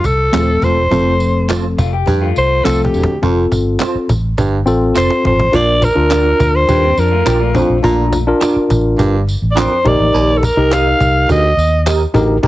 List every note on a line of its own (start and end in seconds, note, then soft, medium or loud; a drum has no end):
0.04 0.28 C2 medium
0.04 0.65 A4 loud
0.04 cajon bass loud
0.04 tambourine medium
0.32 0.57 D#1 medium
0.32 0.77 F3 medium
0.32 0.77 A3 medium
0.32 0.47 C4 medium
0.32 0.77 C4 medium
0.32 0.47 F4 medium
0.32 0.40 G#4 medium
0.32 0.48 A4 medium
0.32 0.48 C5 medium
0.32 cajon slap loud
0.32 clap medium
0.32 tambourine loud
0.40 0.81 A4 medium
0.62 0.86 E1 medium
0.62 0.85 F2 medium
0.62 1.50 C5 medium
0.62 cajon bass loud
0.62 tambourine soft
0.90 1.74 F1 medium
0.90 1.14 F2 loud
0.90 1.79 F3 medium
0.90 1.79 A3 medium
0.90 1.79 C4 medium
0.90 1.79 A4 medium
0.90 cajon bass loud
0.90 tambourine soft
1.20 cajon slap soft
1.20 tambourine medium
1.49 1.63 C4 medium
1.49 1.64 F4 loud
1.49 1.64 A4 medium
1.49 1.64 C5 loud
1.49 cajon slap loud
1.49 clap medium
1.49 tambourine medium
1.78 2.02 F1 loud
1.78 1.92 A3 medium
1.78 1.92 F4 medium
1.78 cajon bass loud
1.78 tambourine medium
1.93 2.20 G4 medium
2.07 2.31 F2 loud
2.07 2.30 G2 medium
2.07 cajon bass loud
2.07 tambourine soft
2.21 3.04 A3 medium
2.21 3.04 F4 medium
2.36 2.60 C2 medium
2.36 2.66 C5 loud
2.36 cajon slap soft
2.36 tambourine medium
2.64 2.89 C2 loud
2.64 2.88 F2 medium
2.64 3.08 F3 medium
2.64 3.08 A3 medium
2.64 2.79 C4 medium
2.64 3.09 C4 medium
2.64 2.79 F4 medium
2.64 2.83 A4 medium
2.64 3.09 A4 medium
2.64 2.80 A4 medium
2.64 2.80 C5 medium
2.64 cajon slap soft
2.64 cajon slap medium
2.64 clap loud
2.64 tambourine loud
2.84 3.20 G4 medium
2.84 cajon bass medium
2.93 3.05 E1 medium
2.93 3.17 D2 medium
2.93 cajon slap medium
2.93 tambourine soft
3.03 cajon bass loud
3.22 3.46 F1 loud
3.22 3.46 F2 medium
3.22 4.10 C4 medium
3.22 4.10 F4 medium
3.22 4.11 A4 medium
3.22 cajon bass loud
3.51 3.75 G1 medium
3.51 cajon bass medium
3.51 cajon slap soft
3.51 tambourine medium
3.80 3.94 C4 medium
3.80 3.95 F4 medium
3.80 3.95 A4 medium
3.80 3.95 C5 medium
3.80 cajon slap loud
3.80 clap medium
3.80 tambourine medium
3.95 muted fingered electric bass stroke soft
4.09 4.33 A1 medium
4.09 cajon bass loud
4.09 tambourine medium
4.38 4.62 G1 loud
4.38 4.61 G2 medium
4.38 cajon bass loud
4.38 tambourine medium
4.66 4.90 A1 loud
4.66 5.32 C4 loud
4.66 5.32 F4 medium
4.66 5.33 A4 loud
4.66 cajon slap soft
4.66 tambourine medium
4.81 cajon slap soft
4.95 5.08 F1 loud
4.95 5.10 C4 medium
4.95 5.10 F4 medium
4.95 5.10 A4 medium
4.95 5.11 C5 medium
4.95 5.23 C5 loud
4.95 cajon slap medium
4.95 clap medium
4.95 tambourine loud
5.10 cajon slap medium
5.24 5.36 G#1 medium
5.24 5.48 F2 medium
5.24 5.57 C5 medium
5.24 cajon bass medium
5.38 5.50 A1 medium
5.38 cajon bass medium
5.52 5.89 A#1 loud
5.52 5.76 A#2 loud
5.52 5.86 D4 medium
5.52 5.86 F4 medium
5.52 5.86 A#4 medium
5.52 5.85 D5 loud
5.52 cajon bass loud
5.52 tambourine soft
5.82 6.57 A#4 loud
5.82 cajon bass medium
5.82 cajon slap soft
5.82 tambourine medium
5.95 6.32 D2 medium
5.95 6.83 D4 medium
5.95 6.84 F4 medium
5.95 6.84 A#4 medium
6.10 6.25 D4 loud
6.10 6.25 F4 medium
6.10 6.26 A#4 loud
6.10 6.26 D5 loud
6.10 cajon slap loud
6.10 clap medium
6.10 tambourine medium
6.40 6.64 D2 medium
6.40 cajon bass loud
6.40 tambourine medium
6.55 7.01 C5 loud
6.68 6.92 D#2 loud
6.68 6.92 G2 medium
6.68 6.83 D3 medium
6.68 6.83 A#3 medium
6.68 cajon bass medium
6.68 tambourine medium
6.83 6.97 C4 medium
6.97 7.21 F2 medium
6.97 7.11 F3 medium
6.97 7.11 D4 medium
6.97 7.56 A#4 medium
6.97 cajon slap soft
6.97 tambourine medium
7.12 7.26 A3 medium
7.12 7.25 F4 medium
7.25 7.62 A#1 loud
7.25 7.40 A#3 medium
7.25 7.40 D4 medium
7.25 7.40 F4 medium
7.25 7.39 G4 medium
7.25 7.41 A#4 medium
7.25 7.41 D5 medium
7.25 cajon slap loud
7.25 clap loud
7.25 tambourine loud
7.40 8.23 A3 medium
7.40 8.22 F4 medium
7.55 7.78 F2 medium
7.55 7.77 D4 medium
7.55 7.77 F4 medium
7.55 7.77 C5 medium
7.55 cajon bass loud
7.55 tambourine soft
7.69 7.81 A#1 medium
7.83 8.31 A#1 loud
7.83 8.06 A#2 loud
7.83 8.16 D4 medium
7.83 8.17 F4 medium
7.83 8.17 A#5 loud
7.83 cajon bass loud
7.83 tambourine soft
8.13 cajon bass loud
8.13 cajon slap soft
8.13 tambourine medium
8.27 9.14 D4 loud
8.27 9.15 F4 medium
8.27 9.15 A#4 loud
8.41 8.55 D4 medium
8.41 8.56 F4 loud
8.41 8.56 A#4 loud
8.41 8.56 D5 loud
8.41 cajon slap loud
8.41 clap medium
8.41 tambourine medium
8.56 muted fingered electric bass stroke soft
8.70 8.94 A1 loud
8.70 cajon bass loud
8.70 tambourine medium
8.98 9.34 G1 loud
8.98 9.22 G2 medium
8.98 cajon bass loud
8.98 tambourine medium
9.27 cajon slap soft
9.27 tambourine medium
9.42 9.66 A1 medium
9.51 9.60 D5 medium
9.55 9.79 F2 medium
9.55 9.70 D4 medium
9.55 9.71 F4 medium
9.55 9.71 A#4 medium
9.55 9.89 C5 loud
9.55 9.71 D5 medium
9.55 cajon slap loud
9.55 clap loud
9.55 tambourine medium
9.84 9.97 A#1 loud
9.84 10.07 D#2 medium
9.84 10.42 D#4 medium
9.84 10.43 G4 medium
9.84 10.43 A#4 medium
9.84 10.39 D5 loud
9.84 cajon bass loud
10.00 10.11 A1 loud
10.14 10.49 A#1 medium
10.14 10.37 D#2 loud
10.14 cajon slap soft
10.14 tambourine soft
10.37 10.46 A4 medium
10.43 10.74 A#4 loud
10.43 cajon bass loud
10.43 cajon slap soft
10.43 tambourine medium
10.57 10.92 C2 medium
10.57 11.44 D#4 medium
10.57 11.45 G4 medium
10.57 11.45 A#4 medium
10.71 10.85 D#4 medium
10.71 10.86 G4 medium
10.71 10.86 A#4 medium
10.71 10.87 D#5 medium
10.71 11.30 F5 loud
10.71 cajon slap loud
10.71 clap medium
10.71 tambourine medium
11.00 11.24 C2 medium
11.00 cajon bass loud
11.00 tambourine medium
11.29 11.52 D2 medium
11.29 11.52 D2 loud
11.29 11.84 D#5 loud
11.29 cajon bass loud
11.29 tambourine medium
11.57 12.04 D#2 loud
11.57 tambourine medium
11.86 12.00 D#4 medium
11.86 12.01 G4 medium
11.86 12.01 A#4 medium
11.86 12.01 D#5 medium
11.86 cajon slap loud
11.86 clap medium
11.86 tambourine loud
12.01 cajon slap soft
12.14 12.38 A1 loud
12.14 12.38 D2 medium
12.14 12.36 D#4 medium
12.14 12.36 G4 medium
12.14 12.37 A#4 loud
12.14 cajon bass loud
12.14 tambourine soft
12.43 12.47 A#1 loud
12.43 12.47 D#2 loud
12.43 12.47 D#4 medium
12.43 12.47 G4 medium
12.43 cajon bass loud